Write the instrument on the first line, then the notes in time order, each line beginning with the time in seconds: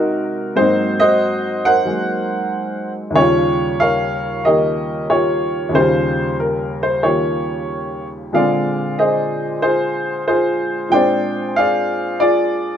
upright piano
Already playing: G#2 C3 F#3 A#3 D#4 F#4 A#4
0.56 G#2 F#3 A#3 C4 D#4 F#4 C5
1.00 F#4 C5 D#5
1.65 A#4 C5 F#5
1.85 F#3 G#3 A#3
3.10 D#2 C#3
3.15 G3 F4 G4 C#5
3.21 F4
3.80 A#4 C#5 F5
4.44 D#3 A#3 G4 A#4 D#5
5.10 F4 G4 C#5
5.69 D#2 C#3
5.75 G3 F4 G4 C5
5.80 F4
6.40 A#4
6.83 C5
7.03 D#3 A#3 F4 G4 C#5
8.33 A#2 D3 G#3 C4 G#4 D5 F5
8.99 G#4 C5 D#5
9.62 F4 G#4 C5
10.28 F4 G#4 C5
10.89 A#2 G#3 C4 G5
10.93 D4 C5 D5
11.56 G#4 D5 F5
12.20 F4 G#4 D5